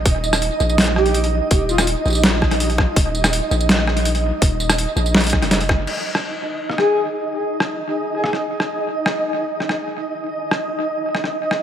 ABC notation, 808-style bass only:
X:1
M:4/4
L:1/16
Q:1/4=165
K:Eb
V:1 name="808-style bass" clef=bass
E,,,4- E,,, z B,,,8- B,,, z | E,,,4- E,,, z B,,,8- B,,, z | E,,,4- E,,, z B,,,8- B,,, z | E,,,4- E,,, z B,,,4- B,,, F,,,4 G,,, |
z16 | z16 | z16 | z16 |]